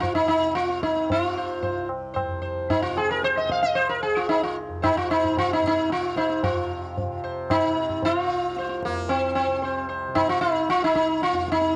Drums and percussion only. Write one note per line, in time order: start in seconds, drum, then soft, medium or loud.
0.03 tabla tin medium
0.03 tabla ge medium
0.57 tabla te medium
0.69 tabla te soft
0.83 tabla ke medium
0.96 tabla te medium
1.10 tabla tin medium
1.10 tabla ge medium
1.63 tabla tin medium
1.63 tabla ge medium
1.89 tabla na medium
2.16 tabla na medium
2.16 tabla ge medium
2.70 tabla tin medium
2.70 tabla ge medium
2.97 tabla na medium
3.23 tabla te medium
3.37 tabla te medium
3.50 tabla ke medium
3.64 tabla te medium
3.77 tabla tin medium
4.30 tabla tin medium
4.84 tabla na medium
4.84 tabla ge medium
5.10 tabla te medium
5.24 tabla ge soft
5.37 tabla na medium
5.37 tabla ge medium
5.63 tabla ge soft
5.90 tabla te medium
6.03 tabla te medium
6.16 tabla ke medium
6.30 tabla te soft
6.43 tabla tin medium
6.43 tabla ge medium
6.97 tabla tin medium
6.97 tabla ge medium
7.50 tabla na medium
7.50 tabla ge medium
7.77 tabla te medium
7.89 tabla ge soft
8.02 tabla tin medium
8.02 tabla ge medium
8.56 tabla te medium
8.69 tabla te medium
8.83 tabla ke medium
8.96 tabla te medium
9.09 tabla tin medium
9.62 tabla tin medium
10.16 tabla na medium
10.16 tabla ge medium
10.69 tabla te medium
10.82 tabla te medium
10.96 tabla ke medium
11.09 tabla te medium
11.22 tabla te medium
11.35 tabla te medium
11.48 tabla ke medium
11.61 tabla te medium